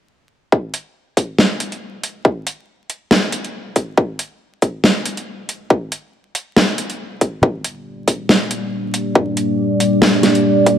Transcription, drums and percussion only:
0.52 kick
0.74 closed hi-hat
1.17 kick, closed hi-hat
1.39 snare
1.60 closed hi-hat
1.72 closed hi-hat
2.03 closed hi-hat
2.25 kick
2.47 closed hi-hat
2.90 closed hi-hat
3.11 snare
3.32 closed hi-hat
3.44 closed hi-hat
3.76 kick, closed hi-hat
3.97 kick
4.19 closed hi-hat
4.62 kick, closed hi-hat
4.84 snare
5.06 closed hi-hat
5.17 closed hi-hat
5.49 closed hi-hat
5.70 kick
5.92 closed hi-hat
6.35 closed hi-hat
6.57 snare
6.78 closed hi-hat
6.90 closed hi-hat
7.21 kick, closed hi-hat
7.43 kick
7.64 closed hi-hat
8.08 kick, closed hi-hat
8.29 snare
8.51 closed hi-hat
8.94 closed hi-hat
9.15 kick
9.37 closed hi-hat
9.80 closed hi-hat
10.02 snare
10.23 snare, closed hi-hat
10.35 closed hi-hat
10.66 kick, closed hi-hat

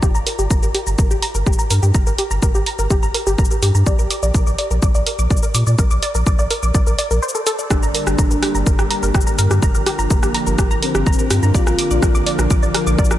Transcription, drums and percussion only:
0.03 kick, shaker
0.15 shaker
0.27 open hi-hat, shaker
0.39 shaker
0.51 kick, shaker
0.63 shaker
0.75 open hi-hat
0.87 shaker
0.98 kick, shaker
1.11 shaker
1.22 open hi-hat
1.35 shaker
1.47 kick, shaker
1.53 shaker
1.59 shaker
1.71 open hi-hat, shaker
1.83 shaker
1.94 kick, shaker
2.07 shaker
2.18 open hi-hat, shaker
2.31 shaker
2.42 kick, shaker
2.55 shaker
2.66 open hi-hat
2.79 shaker
2.90 kick, shaker
3.03 shaker
3.14 open hi-hat
3.27 shaker
3.38 kick, shaker
3.45 shaker
3.51 shaker
3.63 open hi-hat, shaker
3.75 shaker
3.86 kick, shaker
3.99 shaker
4.11 open hi-hat, shaker
4.23 shaker
4.34 kick, shaker
4.47 shaker
4.58 open hi-hat
4.71 shaker
4.82 kick, shaker
4.95 shaker
5.07 open hi-hat
5.19 shaker
5.31 kick, shaker
5.37 shaker
5.43 shaker
5.55 open hi-hat, shaker
5.67 shaker
5.79 kick, shaker
5.91 shaker
6.03 open hi-hat, shaker
6.15 shaker
6.27 kick, shaker
6.39 shaker
6.51 open hi-hat, shaker
6.63 shaker
6.75 kick, shaker
6.87 shaker
6.99 open hi-hat, shaker
7.11 shaker
7.23 shaker
7.29 shaker
7.35 shaker
7.47 open hi-hat, shaker
7.59 shaker
7.71 kick, cross-stick, shaker
7.83 shaker
7.95 open hi-hat, shaker
8.07 cross-stick, shaker
8.19 kick, shaker
8.31 shaker
8.43 cross-stick, open hi-hat
8.55 shaker
8.66 kick, shaker
8.79 cross-stick, shaker
8.91 open hi-hat
9.03 shaker
9.15 kick, cross-stick, shaker
9.21 shaker
9.27 shaker
9.39 open hi-hat, shaker
9.51 cross-stick, shaker
9.63 kick, shaker
9.75 shaker
9.86 cross-stick, open hi-hat, shaker
9.99 shaker
10.10 kick, shaker
10.23 cross-stick, shaker
10.34 open hi-hat
10.47 shaker
10.59 kick, cross-stick, shaker
10.71 shaker
10.83 open hi-hat
10.95 cross-stick, shaker
11.07 kick, shaker
11.13 shaker
11.19 shaker
11.31 cross-stick, open hi-hat, shaker
11.43 shaker
11.55 kick, shaker
11.67 cross-stick, shaker
11.79 open hi-hat, shaker
11.91 shaker
12.03 kick, cross-stick, shaker
12.15 shaker
12.27 open hi-hat
12.39 cross-stick, shaker
12.51 kick, shaker
12.63 shaker
12.75 cross-stick, open hi-hat
12.87 shaker
12.99 kick, shaker
13.05 shaker
13.11 cross-stick, shaker

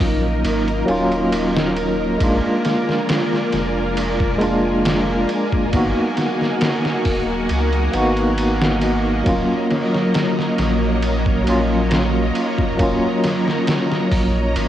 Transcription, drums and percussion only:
0.00 kick, open hi-hat
0.45 ride
0.68 ride
0.88 ride
1.12 ride
1.32 ride
1.56 snare
1.76 ride
2.20 kick, ride
2.65 snare, ride
2.89 snare
3.09 snare, ride
3.33 snare
3.52 snare, ride
3.97 ride
4.20 kick
4.41 ride
4.85 snare, ride
5.29 ride
5.52 kick
5.73 kick, ride
6.17 snare, ride
6.41 snare
6.61 snare, ride
6.85 snare
7.05 kick, open hi-hat
7.49 ride
7.73 ride
7.93 ride
8.17 ride
8.38 ride
8.62 snare
8.81 ride
9.26 kick, ride
9.70 snare, ride
9.95 snare
10.14 snare, ride
10.39 snare
10.58 snare, ride
11.02 ride
11.26 kick
11.47 ride
11.91 snare, ride
12.35 ride
12.58 kick
12.79 kick, ride
13.24 snare, ride
13.48 snare
13.67 snare, ride
13.92 snare
14.12 kick, open hi-hat
14.56 ride

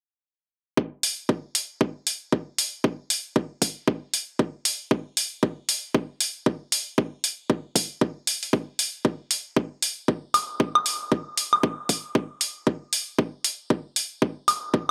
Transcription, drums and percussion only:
0.77 kick
1.03 open hi-hat
1.29 kick
1.55 open hi-hat
1.81 kick
2.07 open hi-hat
2.32 kick
2.58 open hi-hat
2.84 kick
3.10 open hi-hat
3.36 kick
3.62 kick, open hi-hat
3.88 kick
4.14 open hi-hat
4.39 kick
4.65 open hi-hat
4.91 kick
5.17 open hi-hat
5.43 kick
5.69 open hi-hat
5.95 kick
6.20 open hi-hat
6.46 kick
6.72 open hi-hat
6.98 kick
7.24 open hi-hat
7.50 kick
7.76 kick, open hi-hat
8.01 kick
8.27 open hi-hat
8.43 open hi-hat
8.53 kick
8.79 open hi-hat
9.05 kick
9.31 open hi-hat
9.57 kick
9.82 open hi-hat
10.08 kick
10.34 open hi-hat, high woodblock
10.60 kick
10.75 high woodblock
10.86 open hi-hat
11.12 kick
11.37 open hi-hat
11.53 high woodblock
11.63 kick
11.89 kick, open hi-hat
12.15 kick
12.41 open hi-hat
12.67 kick
12.93 open hi-hat
13.19 kick
13.44 open hi-hat
13.70 kick
13.96 open hi-hat
14.22 kick
14.48 open hi-hat, high woodblock
14.74 kick

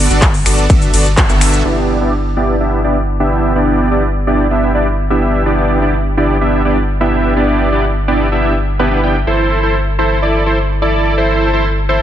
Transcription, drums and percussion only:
0.10 closed hi-hat, shaker
0.22 kick, clap, closed hi-hat, ride, shaker
0.34 open hi-hat, shaker
0.46 finger snap, open hi-hat, ride, shaker
0.58 closed hi-hat, shaker
0.70 kick, closed hi-hat, ride, shaker
0.82 closed hi-hat, shaker
0.94 open hi-hat, ride, shaker
1.06 closed hi-hat, shaker
1.17 kick, clap, closed hi-hat, ride, shaker
1.29 closed hi-hat, shaker
1.41 finger snap, open hi-hat, ride, shaker
1.53 closed hi-hat, shaker

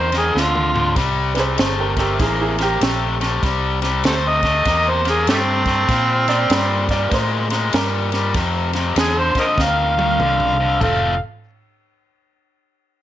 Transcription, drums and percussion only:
0.12 snare, ride
0.37 snare
0.55 mid tom
0.76 floor tom
0.96 kick, snare, ride
1.35 snare, ride
1.58 snare, ride
1.97 kick, snare, ride
2.20 kick, snare, ride
2.58 snare, ride
2.81 snare, ride
3.21 snare, ride
3.43 kick, snare, ride
3.82 snare, ride
4.04 snare, ride
4.43 kick, snare, ride
4.65 kick, snare, ride
5.05 snare, ride
5.27 snare, ride
5.66 kick, snare, ride
5.89 kick, snare, ride
6.28 snare, ride
6.50 snare, ride
6.89 kick, snare, ride
7.11 kick, snare, ride
7.50 snare, ride
7.73 snare, ride
8.12 snare, ride
8.34 kick, snare, ride
8.73 snare, ride
8.96 snare, ride
9.35 kick, snare, ride
9.58 kick, snare
9.99 high tom
10.20 mid tom
10.40 mid tom
10.81 kick, floor tom, crash

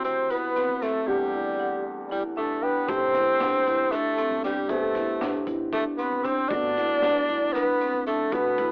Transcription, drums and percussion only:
0.04 closed hi-hat
0.30 closed hi-hat
0.56 snare, closed hi-hat
0.82 snare, closed hi-hat
2.88 kick, closed hi-hat
3.14 snare, closed hi-hat
3.40 snare, closed hi-hat
3.66 snare, closed hi-hat
3.92 closed hi-hat
4.18 closed hi-hat
4.44 snare, closed hi-hat
4.69 kick, closed hi-hat
4.95 kick, snare, closed hi-hat
5.21 snare, closed hi-hat
5.47 kick, closed hi-hat
5.72 kick, closed hi-hat
5.98 closed hi-hat
6.25 kick, closed hi-hat
6.51 kick, closed hi-hat
6.77 snare, closed hi-hat
7.02 snare, closed hi-hat
7.28 closed hi-hat
7.55 snare, closed hi-hat
7.81 closed hi-hat
8.07 closed hi-hat
8.32 kick, closed hi-hat
8.58 kick, closed hi-hat

